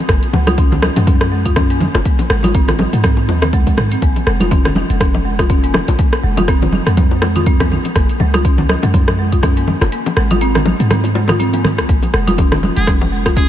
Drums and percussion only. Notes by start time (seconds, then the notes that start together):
0.09 kick, cross-stick, closed hi-hat
0.23 closed hi-hat
0.33 low bongo
0.47 cross-stick, closed hi-hat, high conga
0.58 kick, closed hi-hat, low bongo
0.72 high bongo, low conga
0.82 cross-stick, high conga
0.96 closed hi-hat, low bongo
1.07 kick, closed hi-hat, high conga
1.21 cross-stick, low bongo
1.45 kick, closed hi-hat
1.56 kick, cross-stick, closed hi-hat, low bongo
1.70 closed hi-hat
1.80 low bongo, high conga, low conga
1.95 cross-stick, closed hi-hat, high bongo
2.05 kick, closed hi-hat
2.19 closed hi-hat, low bongo
2.30 cross-stick
2.43 closed hi-hat, low bongo, high conga
2.55 kick, closed hi-hat
2.68 cross-stick, closed hi-hat, high bongo, low conga
2.79 low bongo, high conga
2.93 closed hi-hat
3.03 kick, cross-stick, closed hi-hat, low bongo, high conga
3.17 high bongo
3.28 high bongo, high conga
3.42 cross-stick, closed hi-hat, low bongo, low conga
3.53 kick, closed hi-hat, high conga
3.67 kick, closed hi-hat, low bongo
3.77 cross-stick, high conga, low conga
3.92 closed hi-hat
4.02 kick, closed hi-hat
4.16 closed hi-hat, low bongo
4.27 cross-stick
4.40 closed hi-hat, high conga
4.51 kick, closed hi-hat, low bongo
4.65 cross-stick, high bongo, low conga
4.75 low bongo, high conga
4.90 closed hi-hat
5.00 kick, cross-stick, closed hi-hat, high conga
5.14 low bongo
5.39 kick, cross-stick, closed hi-hat, low bongo
5.50 kick, closed hi-hat
5.64 closed hi-hat
5.74 cross-stick, low bongo, high conga, low conga
5.88 closed hi-hat, high bongo
5.99 kick, closed hi-hat, low bongo
6.13 cross-stick, closed hi-hat
6.37 closed hi-hat, low bongo, high conga
6.48 kick, cross-stick, closed hi-hat
6.62 high bongo, low bongo, low conga
6.72 high conga
6.87 cross-stick, closed hi-hat
6.97 kick, closed hi-hat, low bongo, high conga
7.11 high bongo
7.22 cross-stick, high bongo, low bongo
7.36 closed hi-hat, low conga
7.46 kick, closed hi-hat, high conga
7.60 kick, cross-stick, closed hi-hat, low bongo
7.70 high conga, low conga
7.85 closed hi-hat, low bongo
7.96 kick, cross-stick, closed hi-hat
8.09 closed hi-hat
8.20 low bongo
8.34 cross-stick, closed hi-hat, high conga
8.45 kick, closed hi-hat, low bongo
8.58 high bongo, low conga
8.69 cross-stick, high conga
8.83 closed hi-hat, low bongo
8.94 kick, closed hi-hat, high conga
9.08 cross-stick, low bongo
9.32 kick, closed hi-hat
9.43 kick, cross-stick, closed hi-hat, low bongo
9.57 closed hi-hat
9.67 low bongo, high conga, low conga
9.81 cross-stick, closed hi-hat, high bongo
9.92 closed hi-hat
10.06 closed hi-hat, low bongo
10.17 cross-stick
10.31 closed hi-hat, low bongo, high conga
10.41 closed hi-hat
10.55 cross-stick, closed hi-hat, high bongo, low conga
10.65 low bongo, high conga
10.80 closed hi-hat
10.91 cross-stick, closed hi-hat, low bongo, high conga, low conga
11.04 closed hi-hat, high bongo
11.15 high bongo, high conga
11.28 cross-stick, closed hi-hat, low bongo, low conga
11.40 closed hi-hat, high conga
11.53 closed hi-hat, low bongo
11.65 cross-stick, high conga, low conga
11.78 cross-stick, closed hi-hat
11.89 kick, closed hi-hat, shaker
12.03 closed hi-hat, low bongo
12.13 cross-stick, shaker
12.28 closed hi-hat, high conga, shaker
12.38 kick, closed hi-hat, low bongo, shaker
12.52 cross-stick, high bongo, low conga
12.63 low bongo, high conga, shaker
12.76 closed hi-hat, shaker
12.87 kick, cross-stick, closed hi-hat, high conga, shaker
13.01 low bongo
13.12 shaker
13.26 kick, cross-stick, closed hi-hat, low bongo, shaker
13.37 kick, closed hi-hat, shaker